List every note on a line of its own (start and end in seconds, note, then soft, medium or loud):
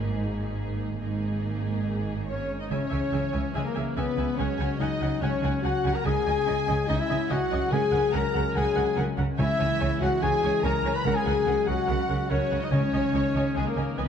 0.00 0.97 G#1 soft
0.00 0.97 G#2 medium
0.00 0.97 A#3 soft
0.00 0.98 A#3 medium
0.00 0.98 D#4 soft
0.00 0.98 D#4 medium
0.00 0.97 G#4 medium
1.00 2.47 G#1 soft
1.00 2.47 G#2 soft
1.00 2.47 A#3 soft
1.00 2.12 A#3 soft
1.00 2.26 D#4 soft
1.00 2.12 D#4 soft
1.00 2.26 G#4 soft
2.27 2.58 C#4 soft
2.27 2.57 C#5 soft
2.27 2.58 C#5 soft
2.60 2.71 D#4 soft
2.60 2.70 D#4 soft
2.60 2.65 D#5 soft
2.60 2.71 D#5 soft
2.70 2.79 C#2 soft
2.70 3.55 C#3 soft
2.70 2.79 C#3 soft
2.70 4.34 E3 soft
2.70 6.01 G#3 soft
2.70 3.53 C#4 medium
2.70 3.53 C#5 medium
2.70 3.56 C#5 medium
2.70 3.53 C#5 medium
2.70 2.79 E5 soft
2.70 2.79 G#5 soft
2.91 3.00 C#2 soft
2.91 3.00 C#3 soft
2.91 3.33 G#3 soft
2.91 2.99 E5 soft
2.91 2.99 G#5 soft
3.13 3.21 C#2 soft
3.13 3.22 C#3 soft
3.13 3.49 F#3 soft
3.13 3.22 E5 soft
3.13 3.22 G#5 soft
3.33 3.42 C#2 soft
3.33 3.42 C#3 soft
3.33 3.41 E5 soft
3.33 3.42 G#5 soft
3.53 3.63 C#2 soft
3.53 3.63 C#3 soft
3.53 4.38 C#3 soft
3.53 3.64 G#3 medium
3.53 3.60 G#3 medium
3.53 3.65 G#4 medium
3.53 3.68 G#4 medium
3.53 3.59 G#4 soft
3.53 3.63 E5 soft
3.53 3.63 G#5 soft
3.63 3.95 A#3 soft
3.63 3.96 A#3 soft
3.63 3.96 A#4 soft
3.63 3.74 A#4 soft
3.63 3.97 A#4 soft
3.75 3.84 C#2 soft
3.75 3.83 C#3 soft
3.75 6.25 C#4 soft
3.75 3.84 E5 soft
3.75 3.84 G#5 soft
3.96 4.05 C#2 soft
3.96 4.05 C#3 medium
3.96 4.38 B3 medium
3.96 4.41 B3 medium
3.96 4.32 B3 soft
3.96 4.37 B4 medium
3.96 4.38 B4 medium
3.96 4.41 B4 soft
3.96 4.05 E5 soft
3.96 4.05 G#5 soft
4.17 4.26 C#2 soft
4.17 4.25 C#3 soft
4.17 4.59 G#3 soft
4.17 4.26 E5 soft
4.17 4.26 G#5 soft
4.36 4.46 C#2 soft
4.36 4.46 C#3 soft
4.36 5.22 C#3 soft
4.36 6.01 F#3 soft
4.36 4.79 C#4 medium
4.36 4.80 C#5 medium
4.36 4.81 C#5 medium
4.36 4.47 F#5 soft
4.36 4.47 G#5 soft
4.59 4.67 C#2 soft
4.59 4.67 C#3 soft
4.59 5.00 G#3 soft
4.59 4.68 F#5 soft
4.59 4.68 G#5 soft
4.79 4.88 C#2 medium
4.79 4.88 C#3 soft
4.79 5.16 F#3 soft
4.79 5.20 D#4 medium
4.79 5.23 D#4 soft
4.79 5.21 D#5 medium
4.79 5.24 D#5 medium
4.79 5.23 D#5 medium
4.79 4.89 F#5 soft
4.79 4.89 G#5 soft
5.01 5.10 C#2 soft
5.01 5.10 C#3 soft
5.01 5.63 G#3 soft
5.01 5.09 F#5 soft
5.01 5.09 G#5 soft
5.21 5.31 C#2 soft
5.21 5.30 C#3 soft
5.21 6.05 C#3 soft
5.21 5.63 C#4 medium
5.21 5.66 C#4 medium
5.21 5.63 C#5 medium
5.21 5.64 C#5 medium
5.21 5.31 F#5 soft
5.21 5.31 G#5 soft
5.42 5.51 C#2 soft
5.42 5.50 C#3 medium
5.42 6.07 A#3 soft
5.42 5.51 F#5 soft
5.42 5.51 G#5 soft
5.62 5.73 C#2 soft
5.62 5.71 C#3 soft
5.62 5.84 G#3 soft
5.62 5.94 F#4 medium
5.62 5.97 F#4 medium
5.62 5.94 F#5 medium
5.62 5.72 F#5 soft
5.62 5.94 F#5 medium
5.62 5.95 F#5 medium
5.62 5.72 G#5 soft
5.84 5.93 C#2 soft
5.84 5.92 C#3 medium
5.84 7.09 G#3 soft
5.84 5.94 F#5 soft
5.84 5.94 G#5 soft
5.94 6.05 A#4 medium
5.94 6.04 A#4 medium
5.94 6.05 A#5 medium
5.94 6.03 A#5 medium
5.94 6.06 A#5 medium
6.04 6.14 C#2 medium
6.04 7.68 C#3 soft
6.04 6.13 C#3 medium
6.04 6.88 C#3 soft
6.04 7.68 G#3 medium
6.04 6.90 G#4 medium
6.04 6.88 G#4 medium
6.04 6.14 D#5 soft
6.04 6.86 G#5 medium
6.04 6.89 G#5 medium
6.04 6.14 G#5 soft
6.26 6.34 C#2 soft
6.26 6.35 C#3 medium
6.26 6.67 C#4 soft
6.26 6.35 D#5 soft
6.26 6.36 G#5 soft
6.47 6.56 C#2 soft
6.47 6.55 C#3 medium
6.47 6.83 B3 soft
6.47 6.56 D#5 medium
6.47 6.56 G#5 soft
6.68 6.77 C#2 medium
6.68 6.76 C#3 medium
6.68 7.51 C#4 soft
6.68 6.77 D#5 soft
6.68 6.76 G#5 soft
6.88 6.97 C#2 medium
6.88 6.96 C#3 medium
6.88 7.72 C#3 soft
6.88 6.99 D#4 medium
6.88 7.01 D#4 medium
6.88 7.00 D#5 medium
6.88 6.99 D#5 medium
6.88 6.98 D#5 soft
6.88 6.98 G#5 soft
6.98 7.30 E4 medium
6.98 7.30 E5 medium
6.98 7.32 E5 medium
7.10 7.18 C#2 soft
7.10 7.18 C#3 medium
7.10 8.75 G#3 soft
7.10 7.18 D#5 soft
7.10 7.18 G#5 soft
7.30 7.39 C#2 medium
7.30 7.39 C#3 medium
7.30 7.67 F#3 soft
7.30 7.72 F#4 medium
7.30 7.74 F#4 medium
7.30 7.38 D#5 medium
7.30 7.71 F#5 medium
7.30 7.72 F#5 medium
7.30 7.38 G#5 medium
7.51 7.60 C#2 medium
7.51 7.60 C#3 medium
7.51 7.92 C#4 soft
7.51 7.60 D#5 soft
7.51 7.59 G#5 soft
7.71 7.80 C#2 medium
7.71 8.31 C#3 medium
7.71 7.80 C#3 medium
7.71 8.53 C#3 medium
7.71 9.20 F#3 medium
7.71 9.20 G#3 medium
7.71 8.13 G#4 medium
7.71 8.17 G#4 medium
7.71 7.79 A#4 medium
7.71 7.79 F#5 medium
7.71 8.02 G#5 medium
7.71 8.13 G#5 medium
7.71 8.14 G#5 medium
7.92 8.01 C#2 medium
7.92 8.02 C#3 medium
7.92 8.33 C#4 soft
7.92 8.00 A#4 medium
7.92 8.00 F#5 medium
8.13 8.22 C#2 medium
8.13 8.22 C#3 medium
8.13 8.21 A#4 medium
8.13 8.45 A#4 medium
8.13 8.59 A#4 medium
8.13 8.22 F#5 medium
8.13 8.55 A#5 medium
8.13 8.57 A#5 medium
8.13 8.56 A#5 medium
8.34 8.43 C#2 medium
8.34 8.43 C#3 medium
8.34 9.17 C#4 soft
8.34 8.43 A#4 soft
8.34 8.42 F#5 soft
8.55 8.64 C#2 medium
8.55 9.38 C#3 medium
8.55 8.63 C#3 medium
8.55 8.97 G#4 medium
8.55 8.98 G#4 medium
8.55 8.64 A#4 medium
8.55 8.63 F#5 medium
8.55 8.96 G#5 medium
8.55 8.97 G#5 medium
8.76 8.84 C#2 medium
8.76 8.84 C#3 medium
8.76 10.42 G#3 soft
8.76 8.84 A#4 soft
8.76 8.84 F#5 medium
8.97 9.06 C#2 medium
8.97 9.05 C#3 medium
8.97 9.33 F#3 soft
8.97 9.05 A#4 medium
8.97 9.05 F#5 medium
9.18 9.26 C#2 medium
9.18 9.26 C#3 medium
9.18 9.59 C#4 soft
9.18 9.26 A#4 soft
9.18 9.26 F#5 soft
9.37 9.47 C#2 medium
9.37 9.97 C#3 medium
9.37 9.47 C#3 medium
9.37 10.21 C#3 medium
9.37 11.01 E3 medium
9.37 11.01 G#3 medium
9.37 9.97 E4 medium
9.37 9.47 C#5 medium
9.37 9.97 E5 medium
9.37 9.47 G#5 medium
9.59 9.68 C#2 medium
9.59 9.68 C#3 medium
9.59 10.00 C#4 soft
9.59 9.67 C#5 medium
9.59 9.68 G#5 medium
9.80 9.89 C#2 medium
9.80 9.89 C#3 medium
9.80 10.16 B3 soft
9.80 9.88 C#5 medium
9.80 9.88 G#5 medium
10.00 10.09 C#2 medium
10.00 10.10 C#3 medium
10.00 10.84 C#4 soft
10.00 10.21 F#4 medium
10.00 10.09 C#5 soft
10.00 10.21 F#5 medium
10.00 10.22 F#5 medium
10.00 10.09 G#5 soft
10.21 10.30 C#2 medium
10.21 11.05 C#3 soft
10.21 10.31 C#3 medium
10.21 10.63 G#4 medium
10.21 10.31 C#5 medium
10.21 10.62 G#5 medium
10.21 10.30 G#5 medium
10.21 10.65 G#5 medium
10.21 10.64 G#5 medium
10.43 10.51 C#2 medium
10.43 10.51 C#3 medium
10.43 12.10 G#3 soft
10.43 10.52 C#5 medium
10.43 10.52 G#5 medium
10.63 10.72 C#2 medium
10.63 10.72 C#3 medium
10.63 11.00 F#3 soft
10.63 10.95 A#4 medium
10.63 10.94 A#4 medium
10.63 10.73 C#5 medium
10.63 10.73 G#5 medium
10.63 10.94 A#5 medium
10.63 10.96 A#5 medium
10.63 10.95 A#5 medium
10.83 10.91 C#2 medium
10.83 10.93 C#3 medium
10.83 11.25 C#4 soft
10.83 10.93 C#5 soft
10.83 10.94 G#5 soft
10.95 11.06 B4 medium
10.95 11.05 B5 medium
10.95 11.06 B5 medium
11.05 11.13 C#2 medium
11.05 11.64 C#3 medium
11.05 11.13 C#3 medium
11.05 11.89 C#3 medium
11.05 12.69 F#3 medium
11.05 12.68 G#3 medium
11.05 11.17 A#4 medium
11.05 11.16 A#4 medium
11.05 11.14 A#4 medium
11.05 11.14 F#5 medium
11.05 11.16 A#5 medium
11.05 11.17 A#5 medium
11.05 11.16 A#5 medium
11.15 11.69 G#4 medium
11.15 11.68 G#5 medium
11.26 11.34 C#2 medium
11.26 11.35 C#3 medium
11.26 11.67 C#4 soft
11.26 11.34 A#4 medium
11.26 11.34 F#5 soft
11.47 11.55 C#2 medium
11.47 11.55 C#3 medium
11.47 11.55 A#4 medium
11.47 11.55 F#5 soft
11.67 11.76 C#2 medium
11.67 11.77 C#3 medium
11.67 12.51 C#4 soft
11.67 12.31 F#4 medium
11.67 11.75 A#4 soft
11.67 11.75 F#5 soft
11.67 12.29 F#5 medium
11.67 12.30 F#5 medium
11.88 11.97 C#2 medium
11.88 11.98 C#3 medium
11.88 12.71 C#3 soft
11.88 11.96 A#4 medium
11.88 11.96 F#5 medium
12.09 12.17 C#2 soft
12.09 12.18 C#3 medium
12.09 13.76 G#3 soft
12.09 12.17 A#4 soft
12.09 12.17 F#5 soft
12.29 12.39 C#2 medium
12.29 12.39 C#3 medium
12.29 12.67 F#3 soft
12.29 12.61 C#4 medium
12.29 12.65 C#4 medium
12.29 12.38 A#4 medium
12.29 12.44 C#5 medium
12.29 12.62 C#5 medium
12.29 12.38 F#5 medium
12.51 12.59 C#2 soft
12.51 12.60 C#3 medium
12.51 12.92 C#4 soft
12.51 12.59 A#4 soft
12.51 12.59 F#5 soft
12.62 12.72 D#4 medium
12.62 12.71 D#4 medium
12.62 12.67 D#5 medium
12.62 12.73 D#5 medium
12.71 12.80 C#2 medium
12.71 13.31 C#3 medium
12.71 12.81 C#3 medium
12.71 13.55 C#3 medium
12.71 14.08 D#3 soft
12.71 14.08 G#3 medium
12.71 13.57 C#4 medium
12.71 13.54 C#4 medium
12.71 13.54 C#5 medium
12.71 13.56 C#5 medium
12.71 12.80 D#5 soft
12.71 12.80 G#5 soft
12.93 13.01 C#2 soft
12.93 13.02 C#3 medium
12.93 13.34 C#4 soft
12.93 13.02 D#5 soft
12.93 13.02 G#5 soft
13.14 13.22 C#2 soft
13.14 13.22 C#3 medium
13.14 13.50 B3 soft
13.14 13.23 D#5 soft
13.14 13.23 G#5 soft
13.35 13.43 C#2 soft
13.35 13.44 C#3 soft
13.35 14.08 C#4 soft
13.35 13.44 D#5 soft
13.35 13.44 G#5 soft
13.55 13.64 C#2 soft
13.55 14.08 C#3 soft
13.55 13.64 C#3 soft
13.55 13.66 G#3 medium
13.55 13.68 G#3 medium
13.55 13.67 G#4 medium
13.55 13.65 D#5 soft
13.55 13.65 G#5 soft
13.65 13.98 A#3 medium
13.65 13.99 A#3 soft
13.65 13.98 A#4 soft
13.65 13.81 A#4 soft
13.65 13.99 A#4 soft
13.77 13.85 C#2 soft
13.77 13.85 C#3 soft
13.77 14.08 G#3 soft
13.77 13.85 D#5 soft
13.77 13.85 G#5 soft
13.97 14.06 C#2 soft
13.97 14.07 C#3 soft
13.97 14.08 F#3 soft
13.97 14.08 B3 medium
13.97 14.08 B4 medium
13.97 14.08 B4 soft
13.97 14.06 D#5 soft
13.97 14.06 G#5 soft